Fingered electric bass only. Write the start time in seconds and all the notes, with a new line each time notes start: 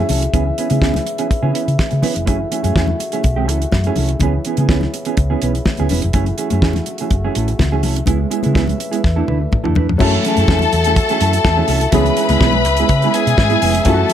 0.09 C2
0.34 C#2
0.71 C#3
0.82 C#2
1.43 C#3
1.68 C#3
1.92 C#3
2.16 F1
2.27 F#1
2.64 F#2
2.76 E2
3.25 B1
3.48 C#2
3.73 F#2
3.98 C2
4.21 C#2
4.58 C#3
4.69 C#2
5.18 C#2
5.42 B1
5.80 C#2
5.91 E1
6.04 F1
6.14 F#1
6.52 F#2
6.62 E2
7.11 F#1
7.36 A1
7.60 C#2
7.85 C2
8.08 C#2
8.46 C#3
8.56 C#2
9.05 E2
9.29 D2
9.66 E2
9.77 E2
9.90 F2
10.38 F#2
10.48 E2
10.73 E2
11.21 F#2
11.44 E2
11.68 C2
11.93 C#2
12.30 C#2
12.41 B1
12.66 C#2
12.89 C#3
13.27 B2
13.38 G#2
13.62 F1
13.86 F#2